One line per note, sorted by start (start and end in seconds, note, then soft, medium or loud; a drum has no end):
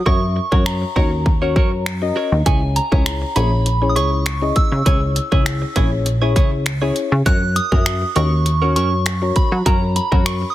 0.06 0.40 F#2 loud
0.06 0.38 C#4 medium
0.06 0.23 F#4 medium
0.06 0.38 F#4 medium
0.06 0.38 A#4 medium
0.06 0.21 A#4 medium
0.06 0.21 C#5 loud
0.06 0.38 E5 medium
0.06 0.62 C#6 medium
0.06 kick loud
0.22 muted clean electric guitar stroke soft
0.36 muted clean electric guitar stroke soft
0.52 0.84 F#2 medium
0.52 0.84 C#4 medium
0.52 0.84 F#4 medium
0.52 0.64 F#4 medium
0.52 0.84 A#4 medium
0.52 0.64 A#4 medium
0.52 0.64 C#5 medium
0.52 0.84 C#5 medium
0.52 kick medium
0.66 2.12 A#5 medium
0.66 finger snap loud
0.82 muted clean electric guitar stroke soft
0.96 1.58 D#2 medium
0.96 1.28 C#4 medium
0.96 1.13 F#4 medium
0.96 1.28 F#4 medium
0.96 1.28 A#4 medium
0.96 1.11 A#4 medium
0.96 1.28 C#5 medium
0.96 1.11 C#5 loud
0.96 kick medium
1.12 muted clean electric guitar stroke soft
1.26 muted clean electric guitar stroke soft
1.26 kick medium
1.42 1.84 C#4 medium
1.42 1.84 F#4 medium
1.42 1.54 F#4 medium
1.42 1.84 A#4 medium
1.42 1.54 A#4 medium
1.42 1.54 C#5 medium
1.42 1.84 C#5 loud
1.56 2.12 F#2 medium
1.56 1.73 F#4 medium
1.56 1.71 A#4 medium
1.56 1.71 C#5 medium
1.56 kick loud
1.72 muted clean electric guitar stroke soft
1.86 finger snap loud
2.02 2.34 C#4 medium
2.02 2.34 F#4 medium
2.02 2.34 A#4 medium
2.02 2.34 D#5 medium
2.02 muted clean electric guitar stroke soft
2.16 2.33 F#4 medium
2.16 2.31 A#4 medium
2.16 2.31 C#5 medium
2.32 2.42 D#2 medium
2.32 muted clean electric guitar stroke soft
2.46 2.80 C#2 loud
2.46 2.78 C#4 medium
2.46 2.63 E4 medium
2.46 2.78 E4 medium
2.46 2.78 G#4 medium
2.46 2.61 G#4 medium
2.46 2.78 C#5 medium
2.46 2.61 C#5 medium
2.46 2.77 G#5 medium
2.46 kick loud
2.46 closed hi-hat medium
2.62 muted clean electric guitar stroke soft
2.76 3.38 A#5 medium
2.76 muted clean electric guitar stroke soft
2.76 closed hi-hat medium
2.92 3.24 C#2 medium
2.92 3.24 C#4 medium
2.92 3.24 E4 medium
2.92 3.04 E4 medium
2.92 3.24 G#4 medium
2.92 3.04 G#4 medium
2.92 3.04 C#5 medium
2.92 3.24 C#5 medium
2.92 kick medium
3.06 finger snap loud
3.06 closed hi-hat medium
3.22 muted clean electric guitar stroke soft
3.36 3.98 A#1 medium
3.36 3.68 C#4 medium
3.36 3.53 E4 medium
3.36 3.68 E4 medium
3.36 3.68 G#4 medium
3.36 3.51 G#4 medium
3.36 3.68 C#5 medium
3.36 3.51 C#5 medium
3.36 3.91 B5 medium
3.36 closed hi-hat medium
3.52 muted clean electric guitar stroke soft
3.66 muted clean electric guitar stroke soft
3.66 closed hi-hat medium
3.82 4.24 C#4 medium
3.82 4.24 E4 medium
3.82 4.24 G#4 medium
3.82 4.24 C#5 medium
3.82 muted clean electric guitar stroke soft
3.89 3.96 D#6 medium
3.96 4.52 C#2 medium
3.96 4.13 E4 medium
3.96 4.11 G#4 medium
3.96 4.11 C#5 medium
3.96 4.58 C#6 loud
3.96 closed hi-hat medium
4.12 muted clean electric guitar stroke soft
4.26 finger snap loud
4.26 muted clean electric guitar stroke soft
4.26 closed hi-hat medium
4.42 4.74 C#4 medium
4.42 4.74 E4 medium
4.42 4.74 G#4 medium
4.42 4.74 D#5 medium
4.42 muted clean electric guitar stroke soft
4.56 5.72 E6 loud
4.56 kick medium
4.56 closed hi-hat medium
4.72 4.82 C#3 medium
4.72 muted clean electric guitar stroke soft
4.86 5.20 C#2 loud
4.86 5.18 C#4 medium
4.86 5.03 E4 medium
4.86 5.18 E4 medium
4.86 5.18 G#4 medium
4.86 5.01 G#4 medium
4.86 5.18 C#5 medium
4.86 5.01 C#5 medium
4.86 kick loud
4.86 closed hi-hat loud
5.02 muted clean electric guitar stroke soft
5.16 muted clean electric guitar stroke soft
5.16 closed hi-hat medium
5.32 5.64 C#2 medium
5.32 5.64 C#4 medium
5.32 5.64 E4 medium
5.32 5.44 E4 medium
5.32 5.64 G#4 medium
5.32 5.44 G#4 medium
5.32 5.44 C#5 medium
5.32 5.64 C#5 loud
5.32 kick medium
5.46 finger snap loud
5.46 closed hi-hat loud
5.62 muted clean electric guitar stroke medium
5.76 6.38 A#1 loud
5.76 6.08 C#4 medium
5.76 5.93 E4 medium
5.76 6.08 E4 medium
5.76 6.08 G#4 medium
5.76 5.91 G#4 medium
5.76 6.08 C#5 loud
5.76 5.91 C#5 loud
5.76 kick medium
5.76 closed hi-hat medium
5.92 muted clean electric guitar stroke soft
6.06 muted clean electric guitar stroke soft
6.06 closed hi-hat medium
6.22 6.64 C#4 medium
6.22 6.64 E4 medium
6.22 6.34 E4 medium
6.22 6.64 G#4 medium
6.22 6.34 G#4 medium
6.22 6.34 C#5 medium
6.22 6.64 C#5 loud
6.36 6.92 C#2 medium
6.36 6.53 E4 medium
6.36 6.51 G#4 medium
6.36 6.51 C#5 medium
6.36 kick loud
6.36 closed hi-hat medium
6.52 muted clean electric guitar stroke soft
6.66 finger snap loud
6.66 muted clean electric guitar stroke soft
6.66 closed hi-hat medium
6.82 7.14 C#4 medium
6.82 7.14 E4 medium
6.82 6.95 E4 medium
6.82 7.14 G#4 medium
6.82 6.95 G#4 medium
6.82 6.95 C#5 medium
6.82 7.14 C#5 medium
6.96 muted clean electric guitar stroke soft
6.96 closed hi-hat medium
7.12 7.22 C#3 medium
7.12 muted clean electric guitar stroke soft
7.26 7.60 F#2 loud
7.26 7.43 C#4 medium
7.26 7.58 C#4 medium
7.26 7.58 F#4 medium
7.26 7.41 F#4 medium
7.26 7.58 A#4 medium
7.26 7.41 A#4 medium
7.26 7.58 C#5 medium
7.26 7.57 F#6 loud
7.26 kick loud
7.26 closed hi-hat loud
7.42 muted clean electric guitar stroke medium
7.56 8.18 D#6 loud
7.56 muted clean electric guitar stroke soft
7.56 closed hi-hat medium
7.72 8.04 F#2 medium
7.72 8.04 C#4 medium
7.72 7.84 C#4 medium
7.72 8.04 F#4 medium
7.72 7.84 F#4 medium
7.72 7.84 A#4 medium
7.72 8.04 A#4 medium
7.72 8.04 E5 medium
7.72 kick medium
7.86 finger snap loud
7.86 closed hi-hat loud
8.02 muted clean electric guitar stroke soft
8.16 8.78 D#2 medium
8.16 8.33 C#4 medium
8.16 8.48 C#4 medium
8.16 8.48 F#4 medium
8.16 8.31 F#4 medium
8.16 8.48 A#4 medium
8.16 8.31 A#4 loud
8.16 8.48 C#5 medium
8.16 8.75 C#6 loud
8.16 closed hi-hat medium
8.32 muted clean electric guitar stroke soft
8.46 muted clean electric guitar stroke soft
8.46 closed hi-hat medium
8.62 9.04 C#4 medium
8.62 8.74 C#4 medium
8.62 9.04 F#4 medium
8.62 8.74 F#4 medium
8.62 8.74 A#4 medium
8.62 9.04 A#4 medium
8.62 9.04 C#5 medium
8.76 9.32 F#2 medium
8.76 8.93 C#4 medium
8.76 8.91 F#4 medium
8.76 8.91 A#4 medium
8.76 9.32 C#6 loud
8.76 closed hi-hat medium
8.92 muted clean electric guitar stroke soft
9.06 finger snap loud
9.06 muted clean electric guitar stroke soft
9.06 closed hi-hat medium
9.22 9.54 C#4 medium
9.22 9.54 F#4 medium
9.22 9.54 A#4 medium
9.22 9.54 C#5 medium
9.22 muted clean electric guitar stroke soft
9.36 9.50 B5 medium
9.36 kick medium
9.36 closed hi-hat medium
9.52 9.62 F#3 medium
9.52 muted clean electric guitar stroke medium
9.66 10.00 F#2 loud
9.66 9.83 C#4 medium
9.66 9.98 C#4 medium
9.66 9.98 F#4 medium
9.66 9.81 F#4 medium
9.66 9.98 A#4 medium
9.66 9.81 A#4 medium
9.66 9.98 C#5 medium
9.66 9.97 A#5 medium
9.66 kick loud
9.66 closed hi-hat medium
9.82 muted clean electric guitar stroke soft
9.96 10.24 B5 medium
9.96 muted clean electric guitar stroke soft
9.96 closed hi-hat medium
10.12 10.44 F#2 medium
10.12 10.44 C#4 medium
10.12 10.24 C#4 medium
10.12 10.44 F#4 medium
10.12 10.24 F#4 medium
10.12 10.23 A#4 medium
10.12 10.44 A#4 medium
10.12 10.44 C#5 medium
10.12 kick medium
10.26 10.48 C#6 medium
10.26 finger snap loud
10.26 closed hi-hat loud
10.42 muted clean electric guitar stroke soft
10.50 10.55 D#6 medium